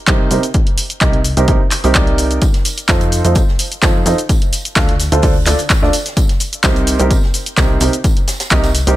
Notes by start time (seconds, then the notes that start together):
0.07 C2 C3 D#4 G4 A#4 C5, kick, clap, closed hi-hat, cabasa
0.31 C2 C3 D#4 G4 A#4 C5, open hi-hat, cabasa
0.43 closed hi-hat, cabasa
0.54 kick, closed hi-hat, cabasa
0.67 closed hi-hat
0.78 open hi-hat, cabasa
0.90 closed hi-hat, cabasa
1.01 C2 C3 D#4 G4 A#4 D#5, kick, clap, closed hi-hat, cabasa
1.13 closed hi-hat
1.24 open hi-hat, cabasa
1.37 C2 C3 D#4 G4 A#4 C5, closed hi-hat, cabasa
1.48 C2 C3 D#4 G4 A#4 C5, kick, closed hi-hat, cabasa
1.71 clap, open hi-hat, cabasa
1.84 C2 C3 D#4 G4 A#4 C5, open hi-hat, cabasa
1.95 C2 C3 D#4 G4 D5, kick, clap, closed hi-hat, cabasa
2.07 closed hi-hat
2.18 open hi-hat, cabasa
2.31 closed hi-hat, cabasa
2.42 kick, closed hi-hat, tambourine, cabasa
2.54 snare, closed hi-hat
2.65 open hi-hat, tambourine, cabasa
2.78 closed hi-hat, cabasa
2.88 F2 F3 D#4 F4 A4 C5, kick, snare, clap, closed hi-hat, tambourine, cabasa
3.01 closed hi-hat
3.12 open hi-hat, tambourine, cabasa
3.24 F2 F3 D#4 F4 A4 C5, closed hi-hat, cabasa
3.35 kick, closed hi-hat, tambourine, cabasa
3.48 snare
3.59 open hi-hat, tambourine, cabasa
3.72 closed hi-hat, cabasa
3.82 F2 F3 D#4 F4 A4 C5, kick, snare, clap, closed hi-hat, tambourine, cabasa
4.06 F2 D#4 F4 A4 C5, open hi-hat, tambourine, cabasa
4.18 closed hi-hat, cabasa
4.29 kick, closed hi-hat, tambourine, cabasa
4.42 closed hi-hat
4.52 open hi-hat, tambourine, cabasa
4.65 closed hi-hat, cabasa
4.76 D2 D3 D4 F4 A4 F5, kick, snare, clap, closed hi-hat, tambourine, cabasa
4.89 snare, closed hi-hat
5.00 snare, open hi-hat, tambourine, cabasa
5.12 D2 D3 D4 F4 A4 C5, closed hi-hat, cabasa
5.22 D2 D3 D4 F4 A4 C5, kick, closed hi-hat, open hi-hat, cabasa
5.46 D2 D3 D4 F4 A4 D5, clap, open hi-hat, tambourine, cabasa
5.59 closed hi-hat, open hi-hat, cabasa
5.70 kick, snare, clap, closed hi-hat, tambourine, cabasa
5.82 D2 D4 F4 A4 D5, snare
5.93 open hi-hat, tambourine, cabasa
6.06 snare, closed hi-hat, cabasa
6.17 kick, closed hi-hat, tambourine, cabasa
6.29 snare, closed hi-hat
6.40 open hi-hat, tambourine, cabasa
6.53 closed hi-hat, cabasa
6.63 C2 C3 D#4 G4 A#4 C5, kick, snare, clap, closed hi-hat, tambourine, cabasa
6.76 closed hi-hat
6.87 open hi-hat, tambourine, cabasa
6.99 C2 C3 D#4 G4 A#4 C5, closed hi-hat, cabasa
7.10 kick, closed hi-hat, tambourine, cabasa
7.23 snare
7.34 open hi-hat, tambourine, cabasa
7.46 closed hi-hat, cabasa
7.57 C2 C3 D#4 G4 A#4 C5, kick, snare, clap, closed hi-hat, tambourine, cabasa
7.80 C2 C3 D#4 G4 A#4 C5, open hi-hat, tambourine, cabasa
7.93 closed hi-hat, cabasa
8.04 kick, closed hi-hat, tambourine, cabasa
8.17 closed hi-hat
8.28 snare, open hi-hat, tambourine, cabasa
8.40 snare, closed hi-hat, tambourine, cabasa
8.51 C2 C3 D#4 G4 A#4 D#5, kick, snare, clap, closed hi-hat, cabasa
8.63 snare, closed hi-hat, tambourine
8.75 snare, open hi-hat, tambourine, cabasa
8.87 C2 C3 D#4 G4 A#4 C5, closed hi-hat, cabasa